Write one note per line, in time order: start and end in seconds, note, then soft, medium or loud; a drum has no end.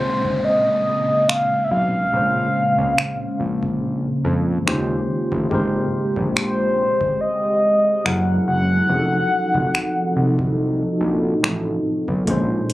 0.00 2.08 A#2 medium
0.00 5.47 C#3 medium
0.00 2.09 G#3 medium
0.00 4.62 G#3 medium
0.00 5.47 A#3 medium
0.00 2.11 C4 medium
0.00 2.10 C#4 medium
0.00 0.46 C5 loud
0.00 downlifter medium
0.25 kick medium
0.44 1.30 D#5 loud
1.29 1.64 F5 loud
1.29 finger snap loud
1.64 1.72 E5 medium
1.71 2.05 B1 medium
1.71 4.24 F5 loud
2.11 2.47 A#1 loud
2.11 4.62 A#2 medium
2.11 4.63 G#3 medium
2.11 4.63 C#4 medium
2.16 4.64 C5 medium
2.78 2.94 C#2 medium
2.98 finger snap loud
3.40 4.07 A#1 medium
3.63 kick medium
4.25 4.58 F2 medium
4.66 5.01 D#2 medium
4.66 5.51 D#3 medium
4.66 5.51 C#4 medium
4.66 5.52 F4 medium
4.66 8.01 G4 medium
4.66 5.50 G4 medium
4.66 8.01 C5 medium
4.66 5.52 C5 medium
4.66 finger snap loud
5.32 5.47 A1 medium
5.32 kick medium
5.49 5.85 G#1 loud
5.49 8.00 G#3 medium
5.49 8.02 G#3 medium
5.49 8.01 G4 medium
5.49 8.01 A#4 medium
5.49 kick loud
5.55 8.02 C5 medium
6.16 6.84 A#1 medium
6.16 kick medium
6.36 7.22 C5 loud
6.36 finger snap loud
7.01 kick medium
7.21 8.07 D#5 loud
8.04 8.39 F#1 loud
8.04 8.89 F#3 medium
8.04 8.89 E4 medium
8.04 8.90 G#4 medium
8.04 8.90 A#4 medium
8.04 8.47 F#5 loud
8.04 finger snap loud
8.47 8.81 F#1 medium
8.47 10.97 F#5 loud
8.87 9.23 F1 loud
8.87 12.22 F3 medium
8.87 12.24 F3 medium
8.87 12.24 C4 medium
8.87 12.23 D#4 medium
8.87 12.24 D#4 medium
8.87 12.24 F#4 medium
8.87 12.24 A4 medium
8.92 8.98 G#4 medium
8.99 12.28 A4 medium
9.55 9.70 F1 medium
9.55 kick medium
9.75 finger snap loud
10.16 10.84 C2 medium
10.39 kick medium
11.01 11.34 A#1 loud
11.43 11.77 A1 medium
11.43 finger snap loud
12.08 12.24 B1 medium
12.08 kick medium
12.25 12.61 A#1 loud
12.25 12.73 A#2 medium
12.25 12.73 G#3 medium
12.25 12.73 A#3 medium
12.25 12.73 C#4 medium
12.25 kick loud
12.25 closed hi-hat medium
12.31 12.73 C5 medium
12.70 closed hi-hat medium